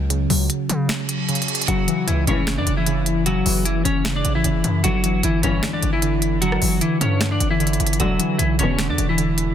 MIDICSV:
0, 0, Header, 1, 7, 480
1, 0, Start_track
1, 0, Tempo, 394737
1, 124, Time_signature, 4, 2, 24, 8
1, 11607, End_track
2, 0, Start_track
2, 0, Title_t, "Clean electric guitar"
2, 0, Program_c, 0, 27
2, 2043, Note_on_c, 0, 66, 106
2, 2053, Note_on_c, 0, 54, 80
2, 2495, Note_off_c, 0, 66, 0
2, 2500, Note_off_c, 0, 54, 0
2, 2523, Note_on_c, 0, 64, 89
2, 2532, Note_on_c, 0, 52, 69
2, 2720, Note_off_c, 0, 64, 0
2, 2726, Note_off_c, 0, 52, 0
2, 2768, Note_on_c, 0, 61, 82
2, 2778, Note_on_c, 0, 73, 66
2, 3111, Note_off_c, 0, 61, 0
2, 3116, Note_off_c, 0, 73, 0
2, 3132, Note_on_c, 0, 62, 83
2, 3142, Note_on_c, 0, 74, 67
2, 3329, Note_off_c, 0, 62, 0
2, 3335, Note_off_c, 0, 74, 0
2, 3370, Note_on_c, 0, 64, 72
2, 3379, Note_on_c, 0, 52, 65
2, 3928, Note_off_c, 0, 64, 0
2, 3933, Note_off_c, 0, 52, 0
2, 3965, Note_on_c, 0, 66, 96
2, 3975, Note_on_c, 0, 54, 85
2, 4416, Note_off_c, 0, 66, 0
2, 4421, Note_off_c, 0, 54, 0
2, 4442, Note_on_c, 0, 64, 86
2, 4452, Note_on_c, 0, 52, 68
2, 4640, Note_off_c, 0, 64, 0
2, 4646, Note_off_c, 0, 52, 0
2, 4678, Note_on_c, 0, 61, 86
2, 4688, Note_on_c, 0, 73, 65
2, 5026, Note_off_c, 0, 61, 0
2, 5031, Note_off_c, 0, 73, 0
2, 5052, Note_on_c, 0, 62, 83
2, 5062, Note_on_c, 0, 74, 68
2, 5249, Note_off_c, 0, 62, 0
2, 5254, Note_off_c, 0, 74, 0
2, 5291, Note_on_c, 0, 64, 81
2, 5300, Note_on_c, 0, 52, 66
2, 5848, Note_off_c, 0, 64, 0
2, 5853, Note_off_c, 0, 52, 0
2, 5883, Note_on_c, 0, 66, 103
2, 5893, Note_on_c, 0, 54, 82
2, 6334, Note_off_c, 0, 66, 0
2, 6340, Note_off_c, 0, 54, 0
2, 6373, Note_on_c, 0, 64, 84
2, 6383, Note_on_c, 0, 52, 70
2, 6566, Note_off_c, 0, 64, 0
2, 6572, Note_off_c, 0, 52, 0
2, 6609, Note_on_c, 0, 61, 82
2, 6619, Note_on_c, 0, 73, 65
2, 6952, Note_off_c, 0, 61, 0
2, 6957, Note_off_c, 0, 73, 0
2, 6971, Note_on_c, 0, 62, 80
2, 6980, Note_on_c, 0, 74, 58
2, 7168, Note_off_c, 0, 62, 0
2, 7174, Note_off_c, 0, 74, 0
2, 7209, Note_on_c, 0, 64, 82
2, 7219, Note_on_c, 0, 52, 67
2, 7767, Note_off_c, 0, 64, 0
2, 7772, Note_off_c, 0, 52, 0
2, 7801, Note_on_c, 0, 66, 104
2, 7810, Note_on_c, 0, 54, 86
2, 8253, Note_off_c, 0, 66, 0
2, 8259, Note_off_c, 0, 54, 0
2, 8283, Note_on_c, 0, 64, 84
2, 8293, Note_on_c, 0, 52, 68
2, 8481, Note_off_c, 0, 64, 0
2, 8486, Note_off_c, 0, 52, 0
2, 8523, Note_on_c, 0, 61, 83
2, 8532, Note_on_c, 0, 73, 66
2, 8869, Note_off_c, 0, 61, 0
2, 8874, Note_off_c, 0, 73, 0
2, 8890, Note_on_c, 0, 62, 78
2, 8900, Note_on_c, 0, 74, 68
2, 9087, Note_off_c, 0, 62, 0
2, 9093, Note_off_c, 0, 74, 0
2, 9127, Note_on_c, 0, 64, 81
2, 9136, Note_on_c, 0, 52, 70
2, 9686, Note_off_c, 0, 64, 0
2, 9691, Note_off_c, 0, 52, 0
2, 9728, Note_on_c, 0, 66, 101
2, 9738, Note_on_c, 0, 54, 82
2, 10177, Note_off_c, 0, 66, 0
2, 10183, Note_off_c, 0, 54, 0
2, 10196, Note_on_c, 0, 64, 84
2, 10206, Note_on_c, 0, 52, 64
2, 10396, Note_off_c, 0, 64, 0
2, 10402, Note_off_c, 0, 52, 0
2, 10448, Note_on_c, 0, 61, 88
2, 10458, Note_on_c, 0, 73, 62
2, 10791, Note_off_c, 0, 61, 0
2, 10796, Note_off_c, 0, 73, 0
2, 10818, Note_on_c, 0, 62, 83
2, 10827, Note_on_c, 0, 74, 63
2, 11012, Note_off_c, 0, 62, 0
2, 11018, Note_off_c, 0, 74, 0
2, 11055, Note_on_c, 0, 64, 81
2, 11064, Note_on_c, 0, 52, 69
2, 11607, Note_off_c, 0, 52, 0
2, 11607, Note_off_c, 0, 64, 0
2, 11607, End_track
3, 0, Start_track
3, 0, Title_t, "Synth keys"
3, 0, Program_c, 1, 88
3, 0, Control_c, 1, 64, 127
3, 0, Note_on_c, 1, 49, 90
3, 0, Note_on_c, 1, 54, 85
3, 120, Note_off_c, 1, 49, 0
3, 120, Note_on_c, 1, 49, 96
3, 364, Note_off_c, 1, 54, 0
3, 364, Note_on_c, 1, 54, 82
3, 1071, Note_off_c, 1, 49, 0
3, 1086, Note_on_c, 1, 49, 85
3, 1550, Note_off_c, 1, 49, 0
3, 1564, Note_off_c, 1, 54, 0
3, 1564, Note_on_c, 1, 49, 84
3, 2022, Note_off_c, 1, 49, 0
3, 2036, Note_on_c, 1, 49, 96
3, 2061, Control_c, 1, 64, 0
3, 2275, Control_c, 1, 64, 127
3, 2289, Note_on_c, 1, 52, 91
3, 2985, Note_off_c, 1, 49, 0
3, 3000, Note_on_c, 1, 49, 91
3, 3475, Note_off_c, 1, 49, 0
3, 3486, Note_off_c, 1, 52, 0
3, 3490, Note_on_c, 1, 49, 87
3, 3948, Note_off_c, 1, 49, 0
3, 3962, Note_on_c, 1, 49, 92
3, 4209, Note_on_c, 1, 52, 87
3, 4915, Note_off_c, 1, 49, 0
3, 4929, Note_on_c, 1, 49, 96
3, 5398, Note_off_c, 1, 49, 0
3, 5406, Note_off_c, 1, 52, 0
3, 5412, Note_on_c, 1, 49, 90
3, 5888, Note_off_c, 1, 49, 0
3, 5893, Note_on_c, 1, 50, 91
3, 5898, Control_c, 1, 64, 0
3, 6079, Control_c, 1, 64, 127
3, 6124, Note_on_c, 1, 52, 82
3, 6829, Note_off_c, 1, 50, 0
3, 6844, Note_on_c, 1, 50, 93
3, 7312, Note_off_c, 1, 50, 0
3, 7324, Note_off_c, 1, 52, 0
3, 7326, Note_on_c, 1, 50, 92
3, 7798, Note_off_c, 1, 50, 0
3, 7813, Note_on_c, 1, 50, 95
3, 8045, Note_on_c, 1, 52, 89
3, 8754, Note_off_c, 1, 50, 0
3, 8769, Note_on_c, 1, 50, 86
3, 9221, Note_off_c, 1, 50, 0
3, 9236, Note_on_c, 1, 50, 93
3, 9245, Note_off_c, 1, 52, 0
3, 9713, Note_off_c, 1, 50, 0
3, 9728, Note_on_c, 1, 50, 96
3, 9740, Control_c, 1, 64, 0
3, 9962, Note_on_c, 1, 52, 84
3, 9991, Control_c, 1, 64, 127
3, 10674, Note_off_c, 1, 50, 0
3, 10688, Note_on_c, 1, 50, 100
3, 11150, Note_off_c, 1, 50, 0
3, 11163, Note_off_c, 1, 52, 0
3, 11165, Note_on_c, 1, 50, 88
3, 11607, Note_off_c, 1, 50, 0
3, 11607, End_track
4, 0, Start_track
4, 0, Title_t, "String section"
4, 0, Program_c, 2, 48
4, 2044, Note_on_c, 2, 33, 78
4, 2044, Note_on_c, 2, 42, 90
4, 2044, Note_on_c, 2, 49, 94
4, 2152, Note_off_c, 2, 33, 0
4, 2152, Note_off_c, 2, 42, 0
4, 2152, Note_off_c, 2, 49, 0
4, 2764, Note_on_c, 2, 37, 99
4, 2764, Note_on_c, 2, 45, 99
4, 2764, Note_on_c, 2, 52, 117
4, 3113, Note_off_c, 2, 37, 0
4, 3113, Note_off_c, 2, 45, 0
4, 3113, Note_off_c, 2, 52, 0
4, 5884, Note_on_c, 2, 35, 82
4, 5884, Note_on_c, 2, 43, 84
4, 5884, Note_on_c, 2, 52, 96
4, 5992, Note_off_c, 2, 35, 0
4, 5992, Note_off_c, 2, 43, 0
4, 5992, Note_off_c, 2, 52, 0
4, 6604, Note_on_c, 2, 35, 92
4, 6604, Note_on_c, 2, 43, 101
4, 6604, Note_on_c, 2, 52, 108
4, 6953, Note_off_c, 2, 35, 0
4, 6953, Note_off_c, 2, 43, 0
4, 6953, Note_off_c, 2, 52, 0
4, 9724, Note_on_c, 2, 35, 88
4, 9724, Note_on_c, 2, 44, 90
4, 9724, Note_on_c, 2, 50, 92
4, 9832, Note_off_c, 2, 35, 0
4, 9832, Note_off_c, 2, 44, 0
4, 9832, Note_off_c, 2, 50, 0
4, 10444, Note_on_c, 2, 32, 101
4, 10444, Note_on_c, 2, 40, 108
4, 10444, Note_on_c, 2, 47, 113
4, 10793, Note_off_c, 2, 32, 0
4, 10793, Note_off_c, 2, 40, 0
4, 10793, Note_off_c, 2, 47, 0
4, 11607, End_track
5, 0, Start_track
5, 0, Title_t, "808-style bass"
5, 0, Program_c, 3, 38
5, 0, Note_on_c, 3, 37, 101
5, 326, Note_off_c, 3, 37, 0
5, 364, Note_on_c, 3, 37, 109
5, 595, Note_off_c, 3, 37, 0
5, 844, Note_on_c, 3, 49, 102
5, 1075, Note_off_c, 3, 49, 0
5, 2044, Note_on_c, 3, 30, 112
5, 2275, Note_off_c, 3, 30, 0
5, 2524, Note_on_c, 3, 37, 105
5, 2755, Note_off_c, 3, 37, 0
5, 2764, Note_on_c, 3, 30, 107
5, 3131, Note_on_c, 3, 42, 103
5, 3149, Note_off_c, 3, 30, 0
5, 3238, Note_off_c, 3, 42, 0
5, 3244, Note_on_c, 3, 30, 105
5, 4166, Note_off_c, 3, 30, 0
5, 4204, Note_on_c, 3, 30, 110
5, 4665, Note_off_c, 3, 30, 0
5, 4684, Note_on_c, 3, 30, 106
5, 5145, Note_off_c, 3, 30, 0
5, 5164, Note_on_c, 3, 33, 109
5, 5394, Note_off_c, 3, 33, 0
5, 5404, Note_on_c, 3, 30, 110
5, 5634, Note_off_c, 3, 30, 0
5, 5644, Note_on_c, 3, 42, 106
5, 5874, Note_off_c, 3, 42, 0
5, 5884, Note_on_c, 3, 31, 114
5, 6345, Note_off_c, 3, 31, 0
5, 6364, Note_on_c, 3, 31, 108
5, 6595, Note_off_c, 3, 31, 0
5, 6604, Note_on_c, 3, 31, 107
5, 6834, Note_off_c, 3, 31, 0
5, 7084, Note_on_c, 3, 31, 110
5, 8006, Note_off_c, 3, 31, 0
5, 8044, Note_on_c, 3, 31, 109
5, 8274, Note_off_c, 3, 31, 0
5, 8524, Note_on_c, 3, 43, 108
5, 8985, Note_off_c, 3, 43, 0
5, 9004, Note_on_c, 3, 31, 109
5, 9465, Note_off_c, 3, 31, 0
5, 9484, Note_on_c, 3, 31, 104
5, 9715, Note_off_c, 3, 31, 0
5, 9724, Note_on_c, 3, 28, 117
5, 9954, Note_off_c, 3, 28, 0
5, 10204, Note_on_c, 3, 35, 108
5, 10434, Note_off_c, 3, 35, 0
5, 10444, Note_on_c, 3, 28, 110
5, 10811, Note_on_c, 3, 40, 103
5, 10829, Note_off_c, 3, 28, 0
5, 10918, Note_off_c, 3, 40, 0
5, 10924, Note_on_c, 3, 28, 108
5, 11607, Note_off_c, 3, 28, 0
5, 11607, End_track
6, 0, Start_track
6, 0, Title_t, "Reverse cymbal"
6, 0, Program_c, 4, 119
6, 1084, Note_on_c, 4, 60, 83
6, 2044, Note_off_c, 4, 60, 0
6, 11607, End_track
7, 0, Start_track
7, 0, Title_t, "Drums"
7, 124, Note_on_c, 9, 42, 81
7, 246, Note_off_c, 9, 42, 0
7, 366, Note_on_c, 9, 46, 90
7, 487, Note_off_c, 9, 46, 0
7, 604, Note_on_c, 9, 42, 81
7, 726, Note_off_c, 9, 42, 0
7, 845, Note_on_c, 9, 42, 68
7, 967, Note_off_c, 9, 42, 0
7, 1083, Note_on_c, 9, 38, 112
7, 1084, Note_on_c, 9, 42, 77
7, 1093, Note_on_c, 9, 26, 88
7, 1204, Note_off_c, 9, 38, 0
7, 1206, Note_off_c, 9, 42, 0
7, 1215, Note_off_c, 9, 26, 0
7, 1323, Note_on_c, 9, 42, 85
7, 1445, Note_off_c, 9, 42, 0
7, 1564, Note_on_c, 9, 42, 49
7, 1644, Note_off_c, 9, 42, 0
7, 1644, Note_on_c, 9, 42, 57
7, 1724, Note_off_c, 9, 42, 0
7, 1724, Note_on_c, 9, 42, 64
7, 1804, Note_off_c, 9, 42, 0
7, 1804, Note_on_c, 9, 42, 67
7, 1884, Note_off_c, 9, 42, 0
7, 1884, Note_on_c, 9, 42, 73
7, 1964, Note_off_c, 9, 42, 0
7, 1964, Note_on_c, 9, 42, 86
7, 2044, Note_off_c, 9, 42, 0
7, 2044, Note_on_c, 9, 42, 82
7, 2166, Note_off_c, 9, 42, 0
7, 2285, Note_on_c, 9, 42, 88
7, 2407, Note_off_c, 9, 42, 0
7, 2525, Note_on_c, 9, 42, 85
7, 2646, Note_off_c, 9, 42, 0
7, 2765, Note_on_c, 9, 42, 70
7, 2887, Note_off_c, 9, 42, 0
7, 3003, Note_on_c, 9, 38, 118
7, 3005, Note_on_c, 9, 42, 79
7, 3013, Note_on_c, 9, 26, 90
7, 3125, Note_off_c, 9, 38, 0
7, 3126, Note_off_c, 9, 42, 0
7, 3135, Note_off_c, 9, 26, 0
7, 3243, Note_on_c, 9, 42, 85
7, 3365, Note_off_c, 9, 42, 0
7, 3483, Note_on_c, 9, 42, 79
7, 3605, Note_off_c, 9, 42, 0
7, 3723, Note_on_c, 9, 42, 68
7, 3845, Note_off_c, 9, 42, 0
7, 3964, Note_on_c, 9, 42, 82
7, 4086, Note_off_c, 9, 42, 0
7, 4206, Note_on_c, 9, 46, 91
7, 4327, Note_off_c, 9, 46, 0
7, 4444, Note_on_c, 9, 42, 87
7, 4566, Note_off_c, 9, 42, 0
7, 4685, Note_on_c, 9, 42, 73
7, 4807, Note_off_c, 9, 42, 0
7, 4923, Note_on_c, 9, 38, 116
7, 4925, Note_on_c, 9, 42, 77
7, 4933, Note_on_c, 9, 26, 94
7, 5045, Note_off_c, 9, 38, 0
7, 5046, Note_off_c, 9, 42, 0
7, 5055, Note_off_c, 9, 26, 0
7, 5163, Note_on_c, 9, 42, 84
7, 5285, Note_off_c, 9, 42, 0
7, 5403, Note_on_c, 9, 42, 81
7, 5525, Note_off_c, 9, 42, 0
7, 5643, Note_on_c, 9, 42, 70
7, 5765, Note_off_c, 9, 42, 0
7, 5884, Note_on_c, 9, 42, 81
7, 6006, Note_off_c, 9, 42, 0
7, 6126, Note_on_c, 9, 42, 93
7, 6247, Note_off_c, 9, 42, 0
7, 6365, Note_on_c, 9, 42, 82
7, 6486, Note_off_c, 9, 42, 0
7, 6605, Note_on_c, 9, 42, 70
7, 6727, Note_off_c, 9, 42, 0
7, 6843, Note_on_c, 9, 38, 117
7, 6844, Note_on_c, 9, 42, 83
7, 6853, Note_on_c, 9, 26, 91
7, 6965, Note_off_c, 9, 38, 0
7, 6966, Note_off_c, 9, 42, 0
7, 6975, Note_off_c, 9, 26, 0
7, 7083, Note_on_c, 9, 42, 83
7, 7205, Note_off_c, 9, 42, 0
7, 7323, Note_on_c, 9, 42, 82
7, 7445, Note_off_c, 9, 42, 0
7, 7563, Note_on_c, 9, 42, 67
7, 7684, Note_off_c, 9, 42, 0
7, 7804, Note_on_c, 9, 42, 80
7, 7926, Note_off_c, 9, 42, 0
7, 7931, Note_on_c, 9, 37, 88
7, 8046, Note_on_c, 9, 46, 91
7, 8052, Note_off_c, 9, 37, 0
7, 8167, Note_off_c, 9, 46, 0
7, 8284, Note_on_c, 9, 42, 86
7, 8406, Note_off_c, 9, 42, 0
7, 8526, Note_on_c, 9, 42, 70
7, 8647, Note_off_c, 9, 42, 0
7, 8763, Note_on_c, 9, 38, 116
7, 8765, Note_on_c, 9, 42, 77
7, 8774, Note_on_c, 9, 26, 92
7, 8885, Note_off_c, 9, 38, 0
7, 8887, Note_off_c, 9, 42, 0
7, 8895, Note_off_c, 9, 26, 0
7, 9003, Note_on_c, 9, 42, 83
7, 9125, Note_off_c, 9, 42, 0
7, 9244, Note_on_c, 9, 42, 51
7, 9324, Note_off_c, 9, 42, 0
7, 9324, Note_on_c, 9, 42, 56
7, 9404, Note_off_c, 9, 42, 0
7, 9404, Note_on_c, 9, 42, 65
7, 9484, Note_off_c, 9, 42, 0
7, 9484, Note_on_c, 9, 42, 69
7, 9564, Note_off_c, 9, 42, 0
7, 9564, Note_on_c, 9, 42, 76
7, 9644, Note_off_c, 9, 42, 0
7, 9644, Note_on_c, 9, 42, 84
7, 9724, Note_off_c, 9, 42, 0
7, 9724, Note_on_c, 9, 42, 81
7, 9846, Note_off_c, 9, 42, 0
7, 9965, Note_on_c, 9, 42, 92
7, 10087, Note_off_c, 9, 42, 0
7, 10205, Note_on_c, 9, 42, 87
7, 10326, Note_off_c, 9, 42, 0
7, 10445, Note_on_c, 9, 42, 71
7, 10567, Note_off_c, 9, 42, 0
7, 10683, Note_on_c, 9, 38, 113
7, 10685, Note_on_c, 9, 42, 83
7, 10693, Note_on_c, 9, 26, 92
7, 10805, Note_off_c, 9, 38, 0
7, 10806, Note_off_c, 9, 42, 0
7, 10815, Note_off_c, 9, 26, 0
7, 10923, Note_on_c, 9, 42, 85
7, 11045, Note_off_c, 9, 42, 0
7, 11163, Note_on_c, 9, 42, 81
7, 11285, Note_off_c, 9, 42, 0
7, 11403, Note_on_c, 9, 42, 71
7, 11525, Note_off_c, 9, 42, 0
7, 11607, End_track
0, 0, End_of_file